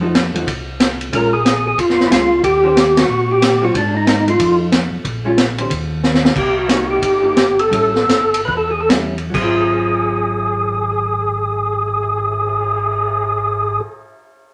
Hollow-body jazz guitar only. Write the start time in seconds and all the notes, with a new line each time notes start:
0.01 F3 A3 D#4 F#4
0.34 F3 A3 D#4 F#4
1.13 G#3 C#4 F4
2.10 G#3 C#4 F4
2.63 D#3 C#4 G4 C5
3.61 F#3 C4 F4
4.28 A3 D#4
5.25 G#3 C#4 F4
5.58 D#3 C#4 G4 C5
6.68 A#3 D#4 G4
7.23 A#3 D#4 G4
7.70 G3 C#4 E4
8.89 G3 C#4 E4
9.30 F#3
9.37 C4
9.43 F4